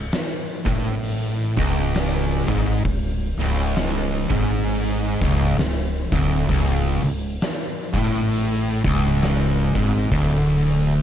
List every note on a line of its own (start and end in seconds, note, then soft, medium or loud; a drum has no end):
0.12 snare loud
0.12 open hi-hat medium
0.66 1.53 A1 loud
0.66 1.55 A2 loud
0.66 kick loud
0.66 open hi-hat medium
1.03 open hi-hat medium
1.57 2.44 C#1 loud
1.57 2.46 C#2 loud
1.57 kick loud
1.57 open hi-hat medium
1.95 snare loud
1.95 open hi-hat medium
2.48 2.82 G#1 medium
2.48 2.84 G#2 loud
2.48 kick loud
2.48 open hi-hat medium
2.85 3.35 C#1 medium
2.85 3.28 C#2 medium
2.85 kick loud
2.85 open hi-hat medium
3.38 4.25 C#1 medium
3.38 4.28 C#2 loud
3.38 open hi-hat medium
3.76 snare loud
3.76 open hi-hat medium
4.30 5.17 G#1 medium
4.30 5.20 G#2 loud
4.30 kick loud
4.30 open hi-hat medium
4.68 open hi-hat medium
5.21 5.55 C#1 loud
5.21 5.57 C#2 loud
5.21 kick loud
5.21 open hi-hat medium
5.58 6.08 C#1 medium
5.58 6.01 C#2 medium
5.58 snare loud
5.58 open hi-hat medium
6.12 6.46 D1 loud
6.12 6.48 D2 loud
6.12 kick loud
6.12 open hi-hat medium
6.49 6.99 C#1 loud
6.49 7.02 C#2 loud
6.49 kick loud
6.49 open hi-hat medium
7.03 7.37 C#1 medium
7.03 7.32 C#2 medium
7.03 open hi-hat medium
7.41 snare loud
7.41 open hi-hat medium
7.93 8.80 A1 loud
7.93 8.83 A2 loud
7.93 kick loud
7.93 open hi-hat medium
8.30 open hi-hat medium
8.84 9.71 C#1 loud
8.84 9.73 C#2 loud
8.84 kick loud
8.84 open hi-hat medium
9.22 snare loud
9.22 open hi-hat medium
9.75 10.09 G#1 medium
9.75 10.11 G#2 loud
9.75 kick loud
9.75 open hi-hat medium
10.11 10.98 D1 medium
10.11 11.01 D2 loud
10.11 kick loud
10.11 open hi-hat medium
10.66 open hi-hat medium